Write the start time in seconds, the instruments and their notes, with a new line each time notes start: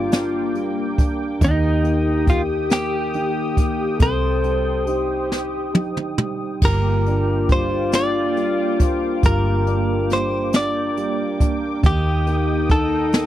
Already playing: fingered electric bass G1, grand piano G3 D4, analog synth pad A#3 G5 D6, french horn section F4
0.11 grand piano D4, snare, closed hi-hat
0.54 grand piano G3, closed hi-hat
0.98 grand piano D4, kick, closed hi-hat
1.39 fingered electric bass D#2, grand piano D#3, french horn section G4, analog synth pad D#6, kick, closed hi-hat
1.44 clean electric guitar D#4
1.83 grand piano A#3, closed hi-hat
2.26 grand piano D#3, clean electric guitar F4, kick, closed hi-hat
2.70 grand piano A#3, clean electric guitar G4, snare, closed hi-hat
3.14 grand piano D#3, closed hi-hat
3.56 grand piano A#3, kick, closed hi-hat
3.98 fingered electric bass C2, grand piano C3, french horn section A4, analog synth pad C5, kick, closed hi-hat
4.03 clean electric guitar C5
4.44 grand piano G3, closed hi-hat
4.86 grand piano D#4, french horn section G4, closed hi-hat
5.30 grand piano G4, snare
5.74 grand piano D#4, high tom
5.97 mid tom
6.18 grand piano G3, mid tom
6.61 fingered electric bass G1, grand piano G3, analog synth pad A#3 D6, french horn section F4, kick, crash
6.65 clean electric guitar A#4
7.06 grand piano D4, closed hi-hat
7.49 grand piano G3, clean electric guitar C5, kick, closed hi-hat
7.92 grand piano D4, clean electric guitar D5, snare, closed hi-hat
8.36 grand piano G3, closed hi-hat
8.79 grand piano D4, kick, closed hi-hat
8.86 clean electric guitar C5
9.23 fingered electric bass G1, grand piano G3, clean electric guitar A#4, kick, closed hi-hat
9.67 grand piano D4, closed hi-hat
10.10 grand piano G3, clean electric guitar C5, snare, closed hi-hat
10.53 grand piano D4, clean electric guitar D5, snare, closed hi-hat
10.97 grand piano G3, closed hi-hat
11.40 grand piano D4, kick, closed hi-hat
11.83 fingered electric bass D#2, grand piano D#3, french horn section D#4, clean electric guitar G4, analog synth pad G5 D#6, kick, closed hi-hat
12.27 grand piano A#3, closed hi-hat
12.69 grand piano D#3, clean electric guitar A4, kick, closed hi-hat
13.12 grand piano A#3, snare, closed hi-hat